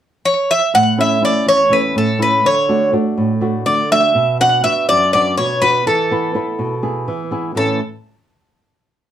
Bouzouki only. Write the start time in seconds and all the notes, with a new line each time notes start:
0.25 C#5
0.51 E5
0.75 F#5
1.01 E5
1.25 D5
1.49 C#5
1.73 B4
1.98 A4
2.22 B4
2.46 C#5
3.66 D5
3.92 E5
4.41 F#5
4.64 E5
4.89 D5
5.13 D5
5.38 C#5
5.62 B4
5.87 A4
7.57 A4